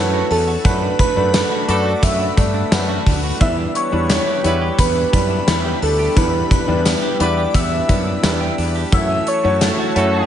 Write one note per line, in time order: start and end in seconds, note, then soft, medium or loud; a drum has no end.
0.00 0.21 F#2 loud
0.00 0.72 E3 medium
0.00 0.64 A3 medium
0.00 0.29 C#4 medium
0.00 0.67 E4 medium
0.00 0.13 F#4 medium
0.00 0.62 F#4 medium
0.00 0.65 F#4 medium
0.00 0.66 G4 medium
0.00 0.67 A4 medium
0.00 0.33 B4 loud
0.00 0.62 C#5 medium
0.00 0.67 C#5 medium
0.00 0.62 E5 medium
0.00 0.62 A5 medium
0.00 0.26 B5 medium
0.13 0.47 F#4 medium
0.30 0.55 E2 medium
0.30 0.72 C#4 medium
0.30 0.68 A4 medium
0.30 0.65 A5 medium
0.30 open hi-hat medium
0.48 1.51 F#4 medium
0.64 0.90 F#2 loud
0.64 1.09 A3 medium
0.64 0.98 A3 medium
0.64 1.09 D4 medium
0.64 1.10 F#4 medium
0.64 3.38 A4 medium
0.64 1.10 B4 medium
0.64 1.00 B4 loud
0.64 3.38 D5 medium
0.64 3.38 F#5 medium
0.64 8.88 B5 medium
0.64 0.98 B5 medium
0.64 kick loud
0.64 closed hi-hat medium
0.82 1.16 D4 medium
0.99 1.33 A3 medium
0.99 1.71 B4 loud
0.99 1.64 B5 medium
0.99 kick loud
0.99 closed hi-hat medium
1.16 1.42 F#2 loud
1.16 1.61 A3 medium
1.16 1.61 D4 medium
1.16 1.68 D4 medium
1.16 1.61 F#4 medium
1.16 1.62 B4 medium
1.34 2.02 A3 medium
1.34 snare loud
1.34 closed hi-hat medium
1.34 tambourine medium
1.51 1.84 F#4 medium
1.68 1.93 F#2 loud
1.68 2.27 A3 medium
1.68 1.90 A3 medium
1.68 2.28 D4 medium
1.68 2.19 D4 medium
1.68 1.90 D4 medium
1.68 1.90 F#4 loud
1.68 2.28 F#4 medium
1.68 1.90 A4 loud
1.68 2.28 B4 medium
1.68 2.04 D5 medium
1.68 2.03 D6 medium
1.68 closed hi-hat medium
1.86 2.88 F#4 medium
2.03 2.28 F#2 loud
2.03 2.36 A3 medium
2.03 3.03 E5 loud
2.03 3.02 E6 medium
2.03 kick medium
2.03 closed hi-hat loud
2.20 2.54 D4 medium
2.37 2.62 G2 medium
2.37 2.67 A3 medium
2.37 2.71 A3 medium
2.37 2.67 D4 medium
2.37 2.67 F#4 medium
2.37 2.67 D5 medium
2.37 kick medium
2.37 closed hi-hat medium
2.54 3.06 D4 medium
2.71 2.97 F#2 loud
2.71 3.31 A3 medium
2.71 3.40 A3 medium
2.71 3.31 D4 medium
2.71 3.31 F#4 medium
2.71 3.32 B4 medium
2.71 snare loud
2.71 closed hi-hat medium
2.71 tambourine medium
2.89 3.22 F#4 medium
3.06 3.31 D2 medium
3.06 3.57 D4 medium
3.06 kick medium
3.06 open hi-hat medium
3.23 3.48 F#4 medium
3.40 3.66 E2 loud
3.40 4.40 E3 medium
3.40 3.85 G3 medium
3.40 3.74 B3 medium
3.40 3.85 D4 medium
3.40 8.88 D4 medium
3.40 3.85 E4 medium
3.40 8.88 G4 medium
3.40 3.86 B4 medium
3.40 8.88 E5 medium
3.40 3.56 E5 loud
3.40 3.55 E6 medium
3.40 kick loud
3.40 closed hi-hat medium
3.58 3.91 D4 medium
3.75 4.08 B3 medium
3.75 4.81 C#5 loud
3.75 4.75 C#6 medium
3.75 closed hi-hat medium
3.92 4.17 E2 medium
3.92 4.37 G3 medium
3.92 4.37 D4 medium
3.92 4.43 D4 medium
3.92 4.37 E4 medium
3.92 4.37 B4 medium
4.09 4.77 B3 medium
4.09 snare loud
4.09 closed hi-hat medium
4.09 tambourine medium
4.27 4.60 G4 medium
4.44 4.69 E2 medium
4.44 5.03 G3 medium
4.44 4.66 B3 medium
4.44 5.04 D4 medium
4.44 4.94 D4 medium
4.44 4.66 E4 medium
4.44 5.04 E4 medium
4.44 4.66 G4 medium
4.44 4.66 B4 loud
4.44 5.04 C#5 medium
4.44 closed hi-hat medium
4.61 5.63 G4 medium
4.79 5.03 E2 loud
4.79 5.12 B3 medium
4.79 5.14 B4 loud
4.79 5.12 B5 medium
4.79 kick medium
4.79 closed hi-hat loud
4.96 5.29 D4 medium
5.12 5.38 F#2 medium
5.12 5.43 G3 medium
5.12 5.46 B3 medium
5.12 5.43 D4 medium
5.12 5.43 E4 medium
5.12 5.43 B4 medium
5.12 5.79 B4 loud
5.12 5.78 B5 medium
5.12 kick medium
5.12 closed hi-hat medium
5.30 5.81 D4 medium
5.47 5.72 E2 loud
5.47 6.07 G3 medium
5.47 6.15 B3 medium
5.47 6.07 D4 medium
5.47 6.07 E4 medium
5.47 6.07 B4 medium
5.47 snare loud
5.47 closed hi-hat medium
5.47 tambourine medium
5.65 5.98 G4 medium
5.82 6.07 D2 medium
5.82 6.32 D4 medium
5.82 6.19 A4 medium
5.82 6.14 A5 medium
5.82 open hi-hat medium
5.99 7.01 G4 medium
6.16 6.42 E2 loud
6.16 7.16 E3 medium
6.16 6.61 G3 medium
6.16 6.50 B3 medium
6.16 6.61 D4 medium
6.16 6.61 E4 medium
6.16 6.62 B4 medium
6.16 6.52 B4 loud
6.16 6.50 B5 medium
6.16 kick loud
6.16 closed hi-hat medium
6.34 6.67 D4 medium
6.51 6.84 B3 medium
6.51 7.22 B4 medium
6.51 7.16 B5 medium
6.51 kick loud
6.51 closed hi-hat medium
6.68 6.93 E2 loud
6.68 7.13 G3 medium
6.68 7.13 D4 medium
6.68 7.19 D4 medium
6.68 7.13 E4 medium
6.68 7.13 B4 medium
6.85 7.53 B3 medium
6.85 snare medium
6.85 closed hi-hat medium
6.85 tambourine medium
7.03 7.36 G4 medium
7.19 7.45 E2 loud
7.19 7.79 G3 medium
7.19 7.42 B3 medium
7.19 7.79 D4 medium
7.19 7.71 D4 medium
7.19 7.42 E4 medium
7.19 7.80 E4 medium
7.19 7.42 G4 medium
7.19 7.42 B4 loud
7.19 7.80 B4 medium
7.19 7.57 D5 medium
7.19 7.55 D6 medium
7.19 closed hi-hat medium
7.37 8.40 G4 medium
7.54 7.79 E2 loud
7.54 7.88 B3 medium
7.54 8.58 E5 loud
7.54 8.58 E6 medium
7.54 kick medium
7.54 closed hi-hat loud
7.72 8.05 D4 medium
7.88 8.14 F#2 medium
7.88 8.18 G3 medium
7.88 8.22 B3 medium
7.88 8.19 D4 medium
7.88 8.19 E4 medium
7.88 8.19 B4 medium
7.88 kick medium
7.88 closed hi-hat medium
8.06 8.57 D4 medium
8.23 8.48 E2 loud
8.23 8.83 G3 medium
8.23 8.99 B3 medium
8.23 8.83 D4 medium
8.23 8.83 E4 medium
8.23 8.83 B4 medium
8.23 snare loud
8.23 closed hi-hat medium
8.23 tambourine medium
8.41 8.74 G4 medium
8.58 8.83 E2 loud
8.58 8.99 D4 medium
8.58 open hi-hat medium
8.75 8.99 G4 medium
8.92 9.17 F#2 loud
8.92 10.26 E3 medium
8.92 9.37 A3 medium
8.92 9.37 E4 medium
8.92 10.26 F#4 medium
8.92 9.37 F#4 medium
8.92 10.26 C#5 medium
8.92 9.37 C#5 medium
8.92 10.26 E5 medium
8.92 9.30 E5 loud
8.92 10.26 A5 medium
8.92 9.25 E6 medium
8.92 kick loud
8.92 closed hi-hat medium
9.10 9.43 C#4 medium
9.27 9.61 A3 medium
9.27 10.26 C#5 loud
9.27 10.26 C#6 medium
9.27 closed hi-hat medium
9.43 9.69 F#2 loud
9.43 9.88 A3 medium
9.43 9.95 C#4 medium
9.43 9.89 E4 medium
9.43 9.89 F#4 medium
9.43 9.89 C#5 medium
9.61 10.26 A3 medium
9.61 snare medium
9.61 closed hi-hat medium
9.61 tambourine medium
9.79 10.13 F#4 medium
9.95 10.21 F#2 loud
9.95 10.26 A3 medium
9.95 10.26 A3 loud
9.95 10.26 C#4 medium
9.95 10.26 E4 medium
9.95 10.26 E4 loud
9.95 10.26 F#4 medium
9.95 10.26 A4 loud
9.95 10.26 C#5 medium
9.95 closed hi-hat medium
10.13 10.26 F#4 medium